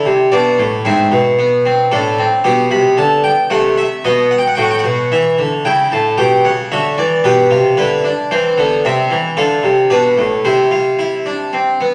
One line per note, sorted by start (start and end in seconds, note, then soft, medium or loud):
0.00 0.11 E4 medium
0.00 0.29 E5 medium
0.05 0.31 C3 medium
0.32 0.58 B2 medium
0.32 0.65 D4 medium
0.32 0.65 D5 medium
0.59 0.85 A2 medium
0.85 1.11 G#2 medium
0.85 1.18 C4 medium
0.85 1.88 E5 medium
1.12 1.89 B2 medium
1.39 1.64 B3 medium
1.65 1.91 C4 medium
1.91 2.25 A2 loud
1.91 2.17 D4 medium
1.91 2.24 A4 medium
2.18 2.44 C4 medium
2.44 2.70 B2 medium
2.44 3.47 B3 medium
2.44 2.70 G4 medium
2.71 2.97 C3 medium
2.71 2.97 B5 loud
2.97 3.30 D3 medium
2.97 3.23 A5 loud
3.24 3.50 G5 loud
3.50 3.83 C3 medium
3.50 3.83 A3 medium
3.50 3.76 F#5 loud
3.77 4.03 E5 loud
4.04 4.37 B2 medium
4.04 4.37 B3 medium
4.04 4.30 D#5 loud
4.31 4.39 F#5 medium
4.38 4.46 G5 medium
4.47 4.55 F#5 medium
4.55 4.83 A2 medium
4.55 5.61 F#4 medium
4.55 4.63 G5 medium
4.63 4.71 F#5 medium
4.71 4.79 G5 medium
4.79 5.10 F#5 medium
4.84 5.10 B2 medium
5.12 5.37 E3 medium
5.12 5.45 E5 medium
5.39 5.64 D3 medium
5.65 5.91 C#3 medium
5.65 5.98 E4 medium
5.65 5.91 G5 medium
5.92 6.18 A2 medium
5.92 6.18 A5 medium
6.18 6.44 B2 medium
6.18 6.51 G4 medium
6.18 6.44 G5 medium
6.45 6.71 C#3 medium
6.45 6.71 F#5 medium
6.72 6.97 D3 medium
6.72 7.05 F#4 medium
6.72 6.97 E5 medium
6.98 7.24 E3 medium
6.98 7.24 D5 medium
7.24 7.50 B2 medium
7.24 7.50 G4 medium
7.24 7.57 B4 medium
7.50 7.76 C3 medium
7.50 7.77 F4 medium
7.77 8.10 D3 medium
7.77 8.03 E4 medium
7.77 8.10 B4 medium
8.04 8.30 D4 medium
8.31 8.57 E3 medium
8.31 8.57 C4 medium
8.31 8.64 C5 medium
8.58 8.83 D3 medium
8.58 8.83 B3 medium
8.85 9.10 C3 loud
8.85 9.17 C4 medium
8.85 9.17 E5 medium
9.11 9.36 E3 loud
9.37 9.63 D3 loud
9.37 9.70 F4 medium
9.37 9.70 A4 medium
9.63 9.89 C3 medium
9.90 10.16 B2 medium
9.90 10.24 D4 medium
9.90 10.24 B4 medium
10.18 10.44 A2 medium
10.45 11.76 C3 medium
10.45 10.71 E4 medium
10.45 11.76 C5 medium
10.71 10.97 F4 medium
10.99 11.25 E4 medium
11.26 11.52 D4 medium
11.53 11.79 C4 medium
11.81 11.94 B3 medium